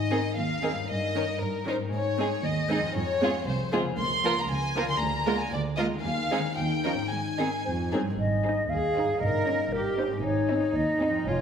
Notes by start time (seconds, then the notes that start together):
Already playing: G#2 C4 D#4 G#4 D#5
0.11 D#3 C4 D#4 G#4
0.38 D#2 F5
0.63 D#3 C4 D#4 G#4
0.71 G2
0.76 C#4
0.80 D#4
0.85 A#4
0.90 G2 D#5
1.15 D#3 C#4 D#4 A#4
1.41 G2 A#4
1.66 D#3 C#4 D#4 A#4 C5
1.75 G#2
1.79 C4
1.84 D#4
1.88 G#4
1.93 G#2 C#5
2.18 G#3 C4 D#4 G#4
2.44 D#2 D#5
2.68 G#3 C4 D#4 G#4
2.78 F2
2.82 C4
2.86 F4
2.91 F2 G#4 C#5
3.21 G#3 C4 F4 G#4
3.45 C2 C5
3.72 G#3 C4 F4 G#4
3.80 C#3
3.84 A#3
3.89 F4
3.93 A#4
3.98 C#2 C6
4.24 F3 A#3 F4 A#4
4.37 A#5
4.49 C#2 G#5
4.76 F3 A#3 F4 A#4
4.83 D3
4.87 A#3 C6
4.92 F4
4.96 G#4
5.00 D2 A#5
5.27 G#3 A#3 F4 A#4
5.39 G#5
5.52 D2 D5
5.78 G#3 A#3 F4 A#4 D#5
5.85 D#3
5.90 C4
5.95 D#4
5.99 G#4 F5
6.04 D#2
6.31 G#3 C4 D#4 G#4
6.39 D#3
6.44 C#4
6.48 D#4
6.53 F4 G5
6.58 D#2
6.84 F3 C#4 D#4 A#4
6.93 G#2 C4
7.02 D#4
7.07 G#4 G#5
7.12 G#2
7.38 D#3 C4 D#4 G#4
7.65 F2 C5
7.92 G2 D#3 C4 D#4 G#4 C#5
8.01 G#2
8.06 C4
8.10 D#4
8.15 G#4
8.19 G#1 D#5
8.44 D#4 G#4 C5
8.70 D#2 G#4 F5
8.96 D#4 G#4 C5
9.04 G2
9.09 C#4
9.13 D#4
9.18 A#4 D#5
9.23 G1 A#4
9.47 C#4 D#4 A#4
9.72 G1 G4 A#4
9.98 C#4 D#4 A#4 C5
10.07 G#2
10.12 C4
10.16 D#4
10.21 G#4 C#5
10.25 G#1 D#4
10.50 C4 D#4 G#4
10.76 D#2 D#5
11.01 C4 D#4 G#4
11.09 F2
11.14 C4
11.19 F4
11.23 G#4 C#5
11.28 F1 F4